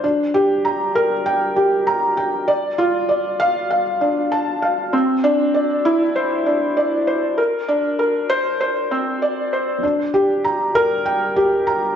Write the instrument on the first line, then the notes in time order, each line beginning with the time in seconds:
felt piano
0.04 D4
0.34 G4
0.65 A#5
0.95 A#4
1.26 G5
1.56 G4
1.87 A#5
2.17 G5
2.48 D5
2.78 F4
3.09 D5
3.40 F5
3.70 F5
4.01 D4
4.32 A5
4.62 F5
4.93 C4
5.24 D4
5.54 D5
5.85 E4
6.16 C5
6.46 D4
6.77 D5
7.07 C5
7.38 A#4
7.68 D4
7.99 A#4
8.30 C5
8.61 C5
8.91 C4
9.22 D5
9.53 C5
9.83 D4
10.14 G4
10.45 A#5
10.75 A#4
11.06 G5
11.36 G4
11.67 A#5